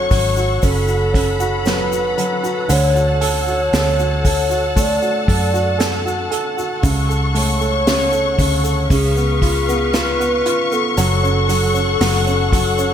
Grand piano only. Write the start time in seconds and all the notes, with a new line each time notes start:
Already playing: F#3 C#4 F#4
0.11 F#3
0.37 F#4
0.63 C#4
0.88 F#4
1.14 C#4
1.40 F#4
1.66 F#3
1.92 F#4
2.18 F#3
2.43 F#4
2.69 D3
2.95 F#4
3.21 A4
3.47 F#4
3.73 A4
3.99 F#4
4.25 A4
4.49 F#4
4.76 A3
5.02 F#4
5.28 A4
5.54 F#4
5.79 A4
6.05 F#4
6.31 A4
6.57 F#4
6.83 C#3
7.09 A4
7.34 A3
7.61 A4
7.87 C#3
8.12 A4
8.38 C#3
8.63 A4
8.90 C#3
9.17 B3
9.42 F4
9.69 B3
9.94 F4
10.20 B3
10.46 F4
10.72 B3
10.97 F#3
11.23 C#4
11.49 F#3
11.75 C#4
12.01 F#3
12.27 C#4
12.53 F#3
12.79 C#4